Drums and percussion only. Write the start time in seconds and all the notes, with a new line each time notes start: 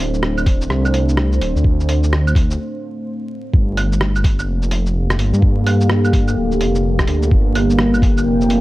0.00 open hi-hat
0.14 shaker
0.23 cross-stick
0.38 claves, shaker
0.46 kick, open hi-hat
0.61 shaker
0.70 cross-stick
0.85 claves, shaker
0.94 open hi-hat
1.09 shaker
1.17 cross-stick
1.33 shaker
1.41 open hi-hat
1.56 shaker
1.64 kick
1.80 shaker
1.89 open hi-hat
2.04 shaker
2.13 cross-stick
2.27 claves, shaker
2.35 kick, open hi-hat
2.51 shaker
3.53 kick
3.77 open hi-hat, claves
3.92 shaker
4.01 cross-stick
4.16 claves, shaker
4.24 kick, open hi-hat
4.39 claves, shaker
4.62 shaker
4.71 open hi-hat
4.86 shaker
5.10 cross-stick, shaker
5.19 open hi-hat
5.34 shaker
5.42 kick
5.66 open hi-hat, claves
5.81 shaker
5.90 cross-stick
6.05 claves, shaker
6.13 kick, open hi-hat
6.28 claves, shaker
6.52 shaker
6.61 open hi-hat
6.75 shaker
6.99 kick, cross-stick, shaker
7.07 open hi-hat
7.22 shaker
7.31 kick
7.55 open hi-hat, claves
7.70 shaker
7.79 cross-stick
7.94 claves, shaker
8.02 kick, open hi-hat
8.18 claves, shaker
8.41 shaker
8.50 open hi-hat